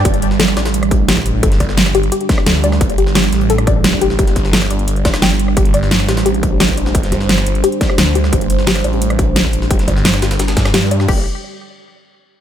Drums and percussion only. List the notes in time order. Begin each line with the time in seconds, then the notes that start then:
0.05 kick, closed hi-hat
0.14 closed hi-hat
0.22 closed hi-hat
0.31 snare
0.40 snare, closed hi-hat
0.48 cross-stick, closed hi-hat
0.57 snare, closed hi-hat
0.66 snare, closed hi-hat
0.74 closed hi-hat
0.83 cross-stick, closed hi-hat
0.91 kick, closed hi-hat
1.09 snare, closed hi-hat
1.17 kick
1.26 closed hi-hat
1.43 kick, closed hi-hat
1.52 snare, closed hi-hat
1.60 kick, snare, closed hi-hat
1.69 snare
1.77 snare, closed hi-hat
1.86 cross-stick, snare, closed hi-hat
1.95 closed hi-hat
2.03 closed hi-hat
2.12 closed hi-hat
2.21 closed hi-hat
2.29 kick, snare, closed hi-hat
2.38 cross-stick
2.46 snare, closed hi-hat
2.64 closed hi-hat
2.72 cross-stick, snare
2.81 kick, closed hi-hat
2.90 closed hi-hat
2.98 closed hi-hat
3.07 snare
3.15 snare, closed hi-hat
3.24 cross-stick, closed hi-hat
3.33 snare, closed hi-hat
3.41 closed hi-hat
3.50 closed hi-hat
3.58 cross-stick, closed hi-hat
3.67 kick, closed hi-hat
3.84 snare, closed hi-hat
3.93 kick
4.01 closed hi-hat
4.10 snare
4.19 kick, closed hi-hat
4.27 snare, closed hi-hat
4.36 kick, snare, closed hi-hat
4.45 snare
4.53 snare, closed hi-hat
4.62 cross-stick, snare, closed hi-hat
4.71 closed hi-hat
4.79 closed hi-hat
4.88 closed hi-hat
4.96 closed hi-hat
5.05 kick, snare, closed hi-hat
5.14 cross-stick, snare, closed hi-hat
5.22 snare, closed hi-hat
5.39 closed hi-hat
5.48 cross-stick
5.57 kick, closed hi-hat
5.65 closed hi-hat
5.74 closed hi-hat
5.83 snare
5.91 snare, closed hi-hat
6.00 cross-stick, closed hi-hat
6.09 snare, closed hi-hat
6.17 snare, closed hi-hat
6.26 closed hi-hat
6.34 closed hi-hat
6.43 kick, closed hi-hat
6.60 snare, closed hi-hat
6.69 kick
6.77 closed hi-hat
6.86 snare
6.95 kick, closed hi-hat
7.03 snare, closed hi-hat
7.12 kick, snare, closed hi-hat
7.21 snare
7.29 snare, closed hi-hat
7.38 cross-stick, snare, closed hi-hat
7.47 closed hi-hat
7.55 closed hi-hat
7.64 closed hi-hat
7.72 closed hi-hat
7.81 kick, snare, closed hi-hat
7.90 cross-stick
7.98 snare, closed hi-hat
8.15 closed hi-hat
8.24 cross-stick, snare
8.33 kick, closed hi-hat
8.41 closed hi-hat
8.50 closed hi-hat
8.59 snare
8.67 snare, closed hi-hat
8.76 cross-stick, closed hi-hat
8.84 closed hi-hat
8.93 closed hi-hat
9.02 closed hi-hat
9.10 cross-stick, closed hi-hat
9.19 kick, closed hi-hat
9.36 snare, closed hi-hat
9.45 kick
9.53 closed hi-hat
9.62 snare
9.71 kick, closed hi-hat
9.79 snare, closed hi-hat
9.88 kick, snare, closed hi-hat
9.97 snare
10.05 snare, closed hi-hat
10.14 cross-stick, snare, closed hi-hat
10.22 snare, closed hi-hat
10.31 snare, closed hi-hat
10.39 snare, closed hi-hat
10.48 snare, closed hi-hat
10.57 kick, snare, closed hi-hat
10.65 cross-stick, snare, closed hi-hat
10.74 snare, closed hi-hat
10.91 closed hi-hat
11.00 cross-stick, snare
11.08 kick, crash